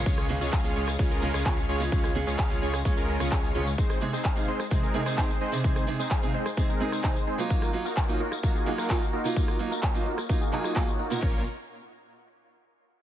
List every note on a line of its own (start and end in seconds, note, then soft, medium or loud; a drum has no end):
0.00 0.26 C#3 medium
0.00 0.27 G#3 medium
0.00 0.27 C#4 medium
0.00 0.27 F4 medium
0.00 0.27 G#4 loud
0.06 0.39 C#2 loud
0.06 0.26 G#3 medium
0.06 0.26 C#4 medium
0.06 0.26 F4 medium
0.06 0.26 G#4 medium
0.06 0.26 C#5 medium
0.06 kick loud
0.06 closed hi-hat medium
0.06 tambourine medium
0.18 cross-stick medium
0.18 closed hi-hat soft
0.18 tambourine soft
0.29 0.40 C#3 medium
0.29 0.40 G#3 medium
0.29 0.40 C#4 medium
0.29 0.41 F4 medium
0.29 0.41 G#4 loud
0.29 open hi-hat loud
0.41 0.50 C#2 medium
0.41 0.50 G#3 medium
0.41 0.50 C#4 medium
0.41 0.50 F4 medium
0.41 0.50 G#4 medium
0.41 0.50 C#5 medium
0.41 closed hi-hat soft
0.41 tambourine medium
0.53 0.74 C#2 loud
0.53 0.73 G#3 medium
0.53 0.73 F5 medium
0.53 kick loud
0.53 clap loud
0.53 closed hi-hat soft
0.53 tambourine medium
0.64 0.75 C#3 medium
0.64 0.75 G#3 medium
0.64 0.75 C#4 medium
0.64 0.76 F4 medium
0.64 0.76 G#4 medium
0.64 closed hi-hat soft
0.64 tambourine soft
0.76 0.97 C#2 medium
0.76 0.88 G#3 medium
0.76 0.88 C#4 medium
0.76 0.88 F4 medium
0.76 0.88 G#4 medium
0.76 0.88 C#5 medium
0.76 open hi-hat medium
0.88 cross-stick medium
0.88 closed hi-hat soft
0.88 tambourine medium
0.98 1.09 C#2 medium
0.98 1.10 C#3 medium
0.98 1.08 G#3 medium
0.98 1.10 G#3 medium
0.98 1.10 C#4 medium
0.98 1.08 C#4 medium
0.98 1.08 F4 medium
0.98 1.10 F4 medium
0.98 1.08 G#4 medium
0.98 1.11 G#4 medium
0.98 1.08 C#5 medium
0.98 kick loud
0.98 closed hi-hat soft
0.98 tambourine medium
1.11 1.32 C#2 loud
1.11 1.31 G#3 loud
1.11 1.31 C#4 medium
1.11 1.31 F4 medium
1.11 1.31 G#4 medium
1.11 1.31 A#4 loud
1.11 closed hi-hat soft
1.11 tambourine soft
1.22 1.43 C#3 medium
1.22 1.43 G#3 medium
1.22 1.43 C#4 medium
1.22 1.43 F4 medium
1.22 1.43 G#4 loud
1.22 open hi-hat loud
1.34 1.43 C#2 loud
1.34 1.43 G#3 medium
1.34 1.43 C#4 medium
1.34 1.43 F4 medium
1.34 1.43 G#4 medium
1.34 1.43 C#5 loud
1.34 cross-stick medium
1.34 closed hi-hat soft
1.34 tambourine medium
1.45 1.67 C#2 loud
1.45 1.56 C#3 medium
1.45 1.57 G#3 medium
1.45 1.66 G#3 medium
1.45 1.57 C#4 medium
1.45 1.66 C#4 medium
1.45 1.66 F4 medium
1.45 1.57 F4 medium
1.45 1.57 G#4 loud
1.45 1.66 C#5 medium
1.45 kick loud
1.45 clap loud
1.45 closed hi-hat soft
1.45 tambourine medium
1.57 closed hi-hat soft
1.57 tambourine soft
1.69 1.90 C#2 loud
1.69 1.81 G#3 medium
1.69 1.81 C#4 medium
1.69 1.81 F4 medium
1.69 1.81 G#4 medium
1.69 1.81 C#5 loud
1.69 open hi-hat medium
1.80 2.12 C#3 medium
1.80 2.13 G#3 medium
1.80 2.13 C#4 medium
1.80 2.13 F4 medium
1.80 2.13 G#4 loud
1.80 closed hi-hat medium
1.80 tambourine medium
1.92 2.25 C#2 loud
1.92 2.12 G#3 medium
1.92 2.12 C#4 medium
1.92 2.12 F4 medium
1.92 2.12 G#4 medium
1.92 2.12 C#5 medium
1.92 kick loud
1.92 closed hi-hat soft
1.92 tambourine medium
2.04 cross-stick medium
2.04 closed hi-hat soft
2.04 tambourine soft
2.15 2.26 C#3 medium
2.15 2.26 G#3 medium
2.15 2.27 C#4 medium
2.15 2.27 F4 medium
2.15 2.27 G#4 loud
2.15 open hi-hat loud
2.27 2.36 C#2 medium
2.27 2.36 G#3 medium
2.27 2.36 C#4 medium
2.27 2.36 F4 medium
2.27 2.36 G#4 medium
2.27 2.36 C#5 medium
2.27 closed hi-hat soft
2.27 tambourine medium
2.39 2.60 C#2 loud
2.39 2.59 G#3 medium
2.39 2.59 C#4 medium
2.39 2.59 F4 medium
2.39 2.59 G#4 medium
2.39 2.59 F5 medium
2.39 kick loud
2.39 clap loud
2.39 closed hi-hat soft
2.39 tambourine medium
2.50 2.61 C#3 medium
2.50 2.61 G#3 medium
2.50 2.61 C#4 medium
2.50 2.62 F4 medium
2.50 2.62 G#4 medium
2.50 closed hi-hat soft
2.50 tambourine soft
2.62 2.83 C#2 medium
2.62 2.74 G#3 medium
2.62 2.74 C#4 medium
2.62 2.74 F4 medium
2.62 2.74 G#4 medium
2.62 2.74 C#5 medium
2.62 open hi-hat medium
2.74 cross-stick medium
2.74 closed hi-hat soft
2.74 tambourine medium
2.84 2.95 C#2 medium
2.84 2.96 C#3 medium
2.84 2.96 G#3 medium
2.84 2.94 G#3 medium
2.84 2.96 C#4 medium
2.84 2.94 C#4 medium
2.84 2.94 F4 medium
2.84 2.96 F4 medium
2.84 2.94 G#4 medium
2.84 2.97 G#4 medium
2.84 2.94 C#5 medium
2.84 kick loud
2.84 closed hi-hat soft
2.84 tambourine medium
2.97 3.18 C#2 loud
2.97 3.17 G#3 loud
2.97 3.17 C#4 medium
2.97 3.17 F4 medium
2.97 3.17 G#4 medium
2.97 3.17 A#4 loud
2.97 closed hi-hat soft
2.97 tambourine soft
3.09 open hi-hat loud
3.19 3.29 C#2 medium
3.19 3.31 C#3 medium
3.19 3.29 G#3 medium
3.19 3.31 G#3 medium
3.19 3.31 C#4 medium
3.19 3.29 C#4 medium
3.19 3.29 F4 medium
3.19 3.31 F4 medium
3.19 3.29 G#4 medium
3.19 3.31 G#4 medium
3.19 3.29 C#5 loud
3.19 cross-stick medium
3.19 closed hi-hat soft
3.19 tambourine medium
3.32 3.53 C#2 medium
3.32 3.52 G#3 medium
3.32 3.52 C#4 medium
3.32 3.52 F4 medium
3.32 3.52 G#4 medium
3.32 3.52 C#5 medium
3.32 kick loud
3.32 clap loud
3.32 closed hi-hat soft
3.32 tambourine medium
3.43 closed hi-hat soft
3.43 tambourine soft
3.54 3.76 C#2 medium
3.54 3.66 C3 medium
3.54 3.66 G#3 medium
3.54 3.67 G#3 medium
3.54 3.66 C#4 medium
3.54 3.67 C#4 medium
3.54 3.67 F4 medium
3.54 3.66 F4 medium
3.54 3.67 G#4 medium
3.54 3.67 C#5 loud
3.54 3.66 C#5 medium
3.54 open hi-hat medium
3.67 closed hi-hat soft
3.67 tambourine medium
3.78 3.98 G#3 medium
3.78 3.98 C4 medium
3.78 3.98 D#4 medium
3.78 3.98 G#4 medium
3.78 3.98 C5 medium
3.78 kick loud
3.78 closed hi-hat soft
3.78 tambourine medium
3.90 cross-stick medium
3.90 closed hi-hat soft
3.90 tambourine soft
4.01 4.12 C3 medium
4.01 4.12 G#3 medium
4.01 4.13 C4 medium
4.01 4.13 D#4 medium
4.01 4.13 G#4 loud
4.01 open hi-hat loud
4.13 4.22 G#3 medium
4.13 4.22 C4 medium
4.13 4.22 D#4 medium
4.13 4.22 G#4 medium
4.13 4.22 C5 medium
4.13 closed hi-hat soft
4.13 tambourine medium
4.25 4.45 G#3 medium
4.25 4.45 C4 medium
4.25 4.45 D#4 medium
4.25 4.45 G#4 medium
4.25 4.45 F5 medium
4.25 kick loud
4.25 clap loud
4.25 closed hi-hat medium
4.25 tambourine medium
4.36 4.47 C3 medium
4.36 4.47 G#3 medium
4.36 4.47 C4 medium
4.36 4.48 D#4 medium
4.36 4.48 G#4 medium
4.36 closed hi-hat soft
4.36 tambourine soft
4.48 4.60 G#3 medium
4.48 4.60 C4 medium
4.48 4.60 D#4 medium
4.48 4.60 G#4 medium
4.48 4.60 C5 medium
4.48 open hi-hat medium
4.60 cross-stick medium
4.60 closed hi-hat soft
4.60 tambourine medium
4.70 4.82 C3 medium
4.70 4.80 G#3 medium
4.70 4.82 G#3 medium
4.70 4.82 C4 medium
4.70 4.80 C4 medium
4.70 4.80 D#4 medium
4.70 4.82 D#4 medium
4.70 4.80 G#4 medium
4.70 4.83 G#4 medium
4.70 4.80 C5 medium
4.70 kick loud
4.70 closed hi-hat soft
4.70 tambourine medium
4.83 5.03 G#3 loud
4.83 5.03 C4 medium
4.83 5.03 D#4 medium
4.83 5.03 G#4 medium
4.83 5.03 A#4 loud
4.83 closed hi-hat soft
4.83 tambourine soft
4.94 5.15 C3 medium
4.94 5.15 G#3 medium
4.94 5.15 C4 medium
4.94 5.15 D#4 medium
4.94 5.15 G#4 loud
4.94 open hi-hat loud
5.06 5.15 G#3 medium
5.06 5.15 C4 medium
5.06 5.15 D#4 medium
5.06 5.15 G#4 medium
5.06 5.15 C5 loud
5.06 cross-stick medium
5.06 closed hi-hat soft
5.06 tambourine medium
5.17 5.29 C3 medium
5.17 5.29 G#3 medium
5.17 5.38 G#3 medium
5.17 5.29 C4 medium
5.17 5.38 C4 medium
5.17 5.38 D#4 medium
5.17 5.29 D#4 medium
5.17 5.38 G#4 medium
5.17 5.29 G#4 loud
5.17 5.38 C5 loud
5.17 kick loud
5.17 clap loud
5.17 closed hi-hat soft
5.17 tambourine medium
5.30 closed hi-hat soft
5.30 tambourine soft
5.41 5.53 G#3 medium
5.41 5.53 C4 medium
5.41 5.53 D#4 medium
5.41 5.53 G#4 medium
5.41 5.53 C5 loud
5.41 open hi-hat medium
5.52 5.85 C3 loud
5.52 5.85 G#3 medium
5.52 5.85 C4 medium
5.52 5.85 D#4 medium
5.52 5.85 G#4 loud
5.52 closed hi-hat soft
5.52 tambourine medium
5.64 5.84 G#3 medium
5.64 5.84 C4 medium
5.64 5.84 D#4 medium
5.64 5.84 G#4 medium
5.64 5.84 C5 medium
5.64 kick loud
5.64 closed hi-hat medium
5.64 tambourine medium
5.76 cross-stick medium
5.76 closed hi-hat soft
5.76 tambourine soft
5.87 5.98 C3 medium
5.87 5.98 G#3 medium
5.87 5.99 C4 medium
5.87 5.99 D#4 medium
5.87 5.99 G#4 loud
5.87 open hi-hat loud
5.99 6.08 G#3 medium
5.99 6.08 C4 medium
5.99 6.08 D#4 medium
5.99 6.08 G#4 medium
5.99 6.08 C5 medium
5.99 closed hi-hat medium
5.99 tambourine medium
6.11 6.31 G#3 medium
6.11 6.31 C4 medium
6.11 6.31 D#4 medium
6.11 6.31 G#4 medium
6.11 6.31 F5 medium
6.11 kick loud
6.11 clap loud
6.11 closed hi-hat medium
6.11 tambourine medium
6.22 6.33 C3 medium
6.22 6.33 G#3 medium
6.22 6.34 C4 medium
6.22 6.34 D#4 medium
6.22 6.34 G#4 medium
6.22 closed hi-hat soft
6.22 tambourine soft
6.34 6.47 G#3 medium
6.34 6.46 C4 medium
6.34 6.46 D#4 medium
6.34 6.47 G#4 medium
6.34 6.46 C5 loud
6.34 open hi-hat medium
6.46 cross-stick medium
6.46 closed hi-hat medium
6.46 tambourine medium
6.57 6.68 C3 medium
6.57 6.66 G#3 medium
6.57 6.68 G#3 medium
6.57 6.68 C4 medium
6.57 6.66 C4 medium
6.57 6.66 D#4 medium
6.57 6.69 D#4 medium
6.57 6.66 G#4 medium
6.57 6.69 G#4 loud
6.57 6.66 C5 medium
6.57 kick loud
6.57 closed hi-hat medium
6.57 tambourine medium
6.69 6.89 G#3 loud
6.69 6.89 C4 medium
6.69 6.89 D#4 medium
6.69 6.89 G#4 medium
6.69 6.90 A#4 loud
6.69 closed hi-hat soft
6.69 tambourine soft
6.80 7.01 C3 medium
6.80 7.01 G#3 medium
6.80 7.01 C4 medium
6.80 7.01 D#4 medium
6.80 7.01 G#4 loud
6.80 open hi-hat loud
6.92 7.01 G#3 medium
6.92 7.01 C4 medium
6.92 7.01 D#4 medium
6.92 7.01 G#4 medium
6.92 7.01 C5 loud
6.92 cross-stick medium
6.92 closed hi-hat soft
6.92 tambourine medium
7.03 7.15 C3 medium
7.03 7.24 G#3 medium
7.03 7.15 G#3 medium
7.03 7.15 C4 medium
7.03 7.24 C4 medium
7.03 7.24 D#4 medium
7.03 7.15 D#4 medium
7.03 7.24 G#4 medium
7.03 7.15 G#4 loud
7.03 7.24 C5 loud
7.03 kick loud
7.03 clap loud
7.03 closed hi-hat medium
7.03 tambourine medium
7.16 closed hi-hat soft
7.16 tambourine soft
7.27 7.40 G#3 medium
7.27 7.40 C4 medium
7.27 7.40 D#4 medium
7.27 7.40 G#4 medium
7.27 7.40 C5 loud
7.27 open hi-hat medium
7.38 7.71 F#3 loud
7.38 7.71 A#3 medium
7.38 7.71 D#4 medium
7.38 7.71 F4 loud
7.38 closed hi-hat soft
7.38 tambourine medium
7.50 7.70 A#3 medium
7.50 7.70 D#4 medium
7.50 7.70 F4 medium
7.50 7.70 F#4 medium
7.50 7.70 A#4 medium
7.50 kick loud
7.50 closed hi-hat medium
7.50 tambourine medium
7.62 cross-stick medium
7.62 closed hi-hat soft
7.62 tambourine soft
7.73 7.84 F#3 medium
7.73 7.85 A#3 medium
7.73 7.85 D#4 medium
7.73 7.85 F4 loud
7.73 open hi-hat loud
7.85 7.94 A#3 medium
7.85 7.94 D#4 medium
7.85 7.94 F4 medium
7.85 7.94 F#4 medium
7.85 7.94 A#4 medium
7.85 closed hi-hat medium
7.85 tambourine medium
7.97 8.17 A#3 medium
7.97 8.17 D#4 medium
7.97 8.17 F#4 medium
7.97 8.17 C#5 medium
7.97 kick loud
7.97 clap loud
7.97 closed hi-hat medium
7.97 tambourine medium
8.08 8.19 F#3 medium
8.08 8.19 A#3 medium
8.08 8.20 D#4 medium
8.08 8.20 F4 medium
8.08 closed hi-hat soft
8.08 tambourine soft
8.20 8.33 A#3 medium
8.20 8.33 D#4 medium
8.20 8.33 F4 medium
8.20 8.33 F#4 medium
8.20 8.33 A#4 medium
8.20 open hi-hat medium
8.32 cross-stick medium
8.32 closed hi-hat medium
8.32 tambourine medium
8.43 8.54 F#3 medium
8.43 8.54 A#3 medium
8.43 8.52 A#3 medium
8.43 8.52 D#4 medium
8.43 8.55 D#4 medium
8.43 8.52 F4 medium
8.43 8.55 F4 medium
8.43 8.52 F#4 medium
8.43 8.52 A#4 medium
8.43 kick loud
8.43 closed hi-hat medium
8.43 tambourine medium
8.55 8.76 A#3 loud
8.55 8.76 D#4 medium
8.55 8.76 F4 medium
8.55 8.76 F#4 medium
8.55 8.76 G#4 loud
8.55 closed hi-hat soft
8.55 tambourine soft
8.66 8.87 F#3 medium
8.66 8.87 A#3 medium
8.66 8.87 D#4 medium
8.66 8.87 F4 medium
8.66 open hi-hat loud
8.78 8.87 A#3 medium
8.78 8.87 D#4 medium
8.78 8.87 F4 medium
8.78 8.87 F#4 medium
8.78 8.87 A#4 loud
8.78 cross-stick medium
8.78 closed hi-hat medium
8.78 tambourine medium
8.89 9.01 F#3 medium
8.89 9.01 A#3 medium
8.89 9.01 D#4 medium
8.89 9.10 F4 medium
8.89 9.01 F4 loud
8.89 9.10 F#4 medium
8.89 kick loud
8.89 clap loud
8.89 closed hi-hat medium
8.89 tambourine medium
9.02 closed hi-hat soft
9.02 tambourine soft
9.13 9.26 A#3 medium
9.13 9.26 D#4 medium
9.13 9.26 F4 medium
9.13 9.26 F#4 medium
9.13 9.26 A#4 loud
9.13 open hi-hat medium
9.24 9.57 F#3 medium
9.24 9.57 A#3 medium
9.24 9.57 D#4 medium
9.24 9.57 F4 medium
9.24 closed hi-hat medium
9.24 tambourine medium
9.36 9.56 A#3 medium
9.36 9.56 D#4 medium
9.36 9.56 F4 medium
9.36 9.56 F#4 medium
9.36 9.56 A#4 medium
9.36 kick loud
9.36 closed hi-hat medium
9.36 tambourine medium
9.48 cross-stick medium
9.48 closed hi-hat soft
9.48 tambourine soft
9.59 9.70 F#3 medium
9.59 9.71 A#3 medium
9.59 9.71 D#4 medium
9.59 9.71 F4 loud
9.59 open hi-hat loud
9.71 9.80 A#3 medium
9.71 9.80 D#4 medium
9.71 9.80 F4 medium
9.71 9.80 F#4 medium
9.71 9.80 A#4 medium
9.71 closed hi-hat medium
9.71 tambourine medium
9.83 10.03 D#4 medium
9.83 10.03 F4 medium
9.83 10.03 F#4 medium
9.83 10.03 C#5 medium
9.83 kick loud
9.83 clap loud
9.83 closed hi-hat medium
9.83 tambourine medium
9.94 10.05 F#3 medium
9.94 10.06 A#3 medium
9.94 10.06 D#4 medium
9.94 10.06 F4 medium
9.94 closed hi-hat soft
9.94 tambourine soft
10.06 10.19 A#3 medium
10.06 10.19 D#4 medium
10.06 10.19 F4 medium
10.06 10.19 F#4 medium
10.06 10.19 A#4 medium
10.06 open hi-hat medium
10.18 cross-stick medium
10.18 closed hi-hat medium
10.18 tambourine medium
10.29 10.40 F#3 medium
10.29 10.38 A#3 medium
10.29 10.40 A#3 medium
10.29 10.38 D#4 medium
10.29 10.41 D#4 medium
10.29 10.38 F4 medium
10.29 10.41 F4 medium
10.29 10.38 F#4 medium
10.29 10.38 A#4 medium
10.29 kick loud
10.29 closed hi-hat medium
10.29 tambourine medium
10.41 10.50 A#3 loud
10.41 10.50 D#4 medium
10.41 10.50 F4 medium
10.41 10.50 F#4 medium
10.41 10.50 G#4 loud
10.41 closed hi-hat soft
10.41 tambourine soft
10.52 10.73 F#3 medium
10.52 10.85 A#3 medium
10.52 10.73 A#3 medium
10.52 10.85 D#4 medium
10.52 10.73 D#4 medium
10.52 10.85 F4 medium
10.52 10.74 F4 medium
10.52 10.85 F#4 medium
10.52 10.85 G#4 loud
10.52 clap medium
10.52 open hi-hat loud
10.64 cross-stick medium
10.64 closed hi-hat medium
10.64 tambourine medium
10.75 10.87 F#3 medium
10.75 10.87 A#3 medium
10.75 10.87 D#4 medium
10.75 10.87 F4 loud
10.75 kick loud
10.75 clap loud
10.75 closed hi-hat medium
10.75 tambourine medium
10.88 10.96 A#3 medium
10.88 10.96 D#4 medium
10.88 10.96 F4 medium
10.88 10.96 F#4 medium
10.88 10.96 C#5 medium
10.88 closed hi-hat soft
10.88 tambourine soft
10.99 11.20 A#3 medium
10.99 11.20 D#4 medium
10.99 11.20 F4 medium
10.99 11.20 F#4 medium
10.99 11.20 A#4 loud
10.99 open hi-hat medium
11.10 11.43 A#2 medium
11.10 11.20 A#3 medium
11.10 11.21 C#4 medium
11.10 11.22 F4 medium
11.10 11.23 A#4 loud
11.10 closed hi-hat medium
11.10 tambourine medium
11.21 11.44 A#1 loud
11.21 11.39 A#3 medium
11.21 11.40 A#3 medium
11.21 11.40 C#4 medium
11.21 11.40 F4 medium
11.21 11.40 A#4 medium
11.21 11.41 A#4 medium
11.21 11.40 C#5 medium
11.21 kick loud
11.21 open hi-hat medium